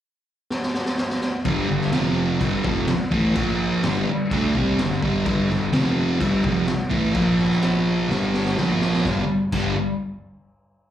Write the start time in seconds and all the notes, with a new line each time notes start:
0.50 snare
0.63 snare
0.74 snare
0.86 snare
0.98 snare
1.10 snare
1.21 snare
1.45 G1 G2 D3 G3, kick, crash
1.69 G1 G2 D3
1.81 snare
1.92 F1 F2 C3 F3, snare, crash
2.40 G1 G2 D3 G3, kick, crash
2.63 F1 F2 C3 F3, kick
2.88 muted distorted electric guitar stroke, muted picked electric bass stroke, snare, crash
3.11 A1 A2 E3 A3, kick
3.35 A#1 A#2 F3 A#3, kick, crash
3.83 G1 G2 D3 G3, snare, crash
4.08 muted picked electric bass stroke, muted distorted electric guitar stroke
4.31 D2 D3 A3 D4, kick, crash
4.55 C2 C3 G3 C4, kick
4.79 G1 G2 D3, snare, crash
5.02 G1 G2 D3 G3, kick
5.26 G1 G2 D3 G3, kick, crash
5.49 G1 G2 D3, snare
5.72 F1 F2 C3 F3, snare, crash
6.20 G1 G2 D3 G3, kick, crash
6.44 F1 F2 C3 F3, kick
6.67 muted picked electric bass stroke, muted distorted electric guitar stroke, snare, crash
6.90 A1 A2 E3 A3, kick
7.12 A#1 A#2 F3 A#3, kick, crash
7.39 snare
7.50 snare
7.62 snare, crash
8.09 G1 G2 D3 G3, snare
8.34 snare
8.45 snare
8.57 A#1 A#2 F3 A#3, snare
8.81 snare
8.93 snare
9.05 G1 G2 D3 G3, kick, snare
9.52 G1 G2 D3 G3, kick, crash